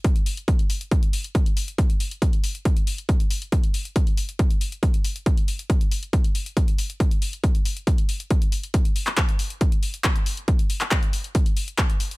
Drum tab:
HH |xxoxxxoxxxoxxxox|xxoxxxoxxxoxxxox|xxoxxxoxxxoxxxox|xxoxxxoxxxoxxxox|
CP |----------------|----------------|----------------|----------------|
BD |o---o---o---o---|o---o---o---o---|o---o---o---o---|o---o---o---o---|

HH |xxoxxxoxxxoxxxox|xxoxxxoxxxoxxxox|xxoxxxoxxxoxxxox|
CP |----------------|---xx-------x---|---xx-------x---|
BD |o---o---o---o---|o---o---o---o---|o---o---o---o---|